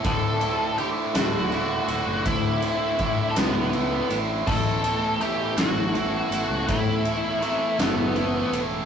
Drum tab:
CC |------|------|x-----|------|
RD |xxxxxx|xxxxxx|-xxxxx|xxxxxx|
SD |---o--|---o--|---o--|---o--|
BD |o-----|o-o---|o-----|o-----|